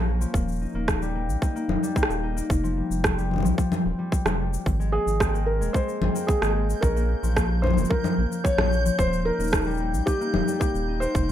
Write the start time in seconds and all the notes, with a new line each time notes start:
Already playing: A#1 F3 A#3 C#4
0.21 F3, shaker
0.34 D#1 A#3, kick, shaker
0.48 shaker
0.52 shaker
0.59 D#4, shaker
0.62 shaker
0.65 shaker
0.72 D#1 A#3, shaker
0.88 kick, cross-stick, shaker
1.02 G3, shaker
1.15 A#3
1.28 A#1, shaker
1.42 D#4, kick, shaker
1.55 A#3, shaker
1.68 D#1, low conga
1.83 G3, shaker
1.96 A#3, kick, shaker
2.03 cross-stick
2.09 D#1, shaker
2.23 D#4
2.36 A#3, shaker
2.50 F1, kick, shaker
2.64 F3, shaker
2.77 G3
2.90 F1, shaker
3.04 C4, kick, cross-stick, shaker
3.18 G3, shaker
3.31 low conga
3.34 low conga
3.36 low conga
3.38 low conga
3.40 low conga
3.42 C2 F3, low conga, shaker
3.58 G3, kick, shaker
3.72 low conga, shaker
3.85 D#1 C4
3.99 G3
4.12 kick, shaker
4.25 F1 F3, cross-stick, low conga, shaker
4.39 G3
4.54 shaker
4.66 G#1 G6, kick, shaker
4.80 G#3, shaker
4.92 A#3 G#4
5.06 G#1, shaker
5.20 C4, kick, cross-stick, shaker
5.34 A#3, shaker
5.46 A#4
5.61 D#1 G#3, shaker
5.73 A#3 C5, kick, shaker
5.89 shaker
6.01 G#1 C4, low conga
6.15 A#3, shaker
6.27 G#4, kick, shaker
6.42 G#1 G#3, cross-stick, shaker
6.56 A#3
6.70 shaker
6.81 A#1 C#4 A#4, kick, shaker
6.96 A#3, shaker
7.23 A#1 F3, shaker
7.37 A#3, kick, cross-stick, shaker
7.62 C#4 C5, low conga
7.67 low conga
7.70 low conga
7.74 F1, low conga
7.77 A#3, low conga, shaker
7.80 low conga
7.84 low conga, shaker
7.88 A#4, kick, low conga
8.04 F3, low conga, shaker
8.18 A#1 A#3
8.32 shaker
8.44 C#4 C#5, kick, shaker
8.58 A#1 A#3, cross-stick, low conga
8.73 shaker
8.85 F3, shaker
8.98 D#1 A#3 C5, kick, shaker
9.13 shaker
9.25 D#4 A#4
9.39 D#1 A#3, shaker
9.44 shaker
9.47 shaker
9.50 kick, cross-stick, shaker
9.54 shaker
9.64 G3, shaker
9.67 shaker
9.70 shaker
9.74 shaker
9.77 A#3, shaker
9.93 A#1, shaker
10.06 D#4 G4, kick, shaker
10.21 A#3, shaker
10.34 D#1, low conga
10.48 G3, shaker
10.60 A#3 G4, kick, shaker
10.74 D#1, shaker
10.88 D#4
11.00 A#3 C5, shaker
11.15 F1, kick, shaker
11.29 F3